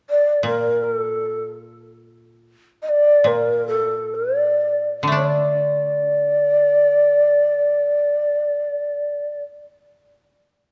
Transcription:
0.10 D5
0.43 A#2 A#4
0.84 A4
2.83 D#5
2.89 D5
3.24 A#2 A#4
3.68 A4
4.15 D5
5.03 D3
5.07 A3
5.12 D4 C#5
5.27 D5

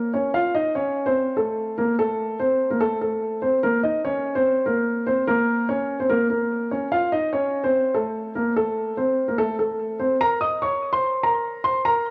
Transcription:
Already playing: A#3 A#4
0.14 C#4 C#5
0.34 F4 F5
0.55 D#4 D#5
0.75 C#4 C#5
1.06 C4 C5
1.37 A3 A4
1.78 A#3 A#4
1.99 A3 A4
2.40 C4 C5
2.70 A#3 A#4
2.81 A3 A4
3.01 A3 A4
3.42 C4 C5
3.63 A#3 A#4
3.83 D#4 D#5
4.05 C#4 C#5
4.35 C4 C5
4.66 A#3 A#4
5.07 C4 C5
5.27 A#3 A#4
5.69 C#4 C#5
6.00 C4 C5
6.10 A#3 A#4
6.30 A#3 A#4
6.71 C#4 C#5
6.92 F4 F5
7.12 D#4 D#5
7.33 C#4 C#5
7.64 C4 C5
7.94 A3 A4
8.35 A#3 A#4
8.56 A3 A4
8.97 C4 C5
9.28 A#3 A#4
9.38 A3 A4
9.59 A3 A4
9.99 C4 C5
10.21 A#4 A#5
10.41 D#5 D#6
10.62 C#5 C#6
10.93 C5 C6
11.23 A#4 A#5
11.64 C5 C6
11.85 A#4 A#5

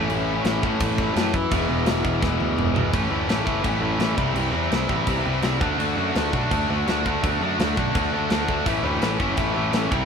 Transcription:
Already playing: A2 E3 A3 C#4 E4
0.10 A1, crash
0.45 A1, snare, crash
0.62 A2 E3 A3 C#4 E4, kick
0.80 A1, kick, crash
0.98 kick
1.14 F#2 A2 E3 A3, snare, crash
1.34 kick
1.50 E1 E2 B2 E3 G#3 B3, kick, crash
1.54 E4
1.69 E1
1.86 E1, snare, crash
2.04 E1, kick
2.21 E1 E3 G#3 B3 E4, kick, snare
2.40 D2, high tom
2.58 E1, mid tom
2.74 E1 E2 B2 E3, floor tom
2.93 A1 A2 E3 A3 C#4 E4, kick, crash
3.09 D2 A2 E3 A3 C#4 E4
3.27 A1 A2 E3 A3 C#4 E4, snare, crash
3.45 F#1 A2 E3 A3 C#4 E4, kick
3.62 A1 A2 E3 A3 C#4 E4, kick, crash
3.81 A1 A2 E3 A3 C#4 E4
3.98 A1 A2 E3 A3 C#4 E4, snare, crash
4.16 C2 C3 E3 G3 C4 E4, kick
4.34 C2 C3 E3 G3 C4 E4, crash
4.52 E2 C3 E3 G3 C4 E4
4.70 C2 C3 E3 G3 C4 E4, snare, crash
4.88 A1 C3 E3 G3 C4 E4, kick
5.06 C2 C3 E3 G3 C4 E4, kick, crash
5.25 C2 C3 E3 G3 C4 E4
5.42 C2 C3 E3 G3 C4 E4, snare, crash
5.60 D2 D3 A3 D4 F#4, kick
5.78 D2 D3 A3 D4 F#4, crash
5.96 F#2 D3 A3 D4 F#4
6.15 D2 D3 A3 D4 F#4, snare, crash
6.33 B1 D3 A3 D4 F#4, kick
6.51 D2 D3 A3 D4 F#4, kick, crash
6.69 D2 D3 A3 D4 F#4
6.87 D2 D3 A3 D4 F#4, snare, crash
7.05 D3 A3 D4 F#4, kick
7.23 D2 D3 A3 D4 F#4, kick, crash
7.41 F#2 D3 A3 D4 F#4
7.59 D2 D3 A3 D4 F#4, snare, crash
7.77 B1 D3 A3 D4 F#4, kick
7.95 D2 D3 A3 D4 F#4, kick, crash
8.12 D2 D3 A3 D4 F#4
8.30 D2 D3 A3 D4 F#4, snare, crash
8.48 D3 A3 D4 F#4, kick
8.66 A1 A2 E3 A3 C#4 E4, kick, crash
8.83 D2 A2 E3 A3 C#4 E4
9.01 A1 A2 E3 A3 C#4 E4, snare, crash
9.19 F#1 A2 E3 A3 C#4 E4, kick
9.37 A1 A2 E3 A3 C#4 E4, kick, crash
9.56 A1 A2 E3 A3 C#4 E4
9.73 A1 A2 E3 A3 C#4 E4, snare, crash
9.91 C2 C3 G3 C4 E4, kick

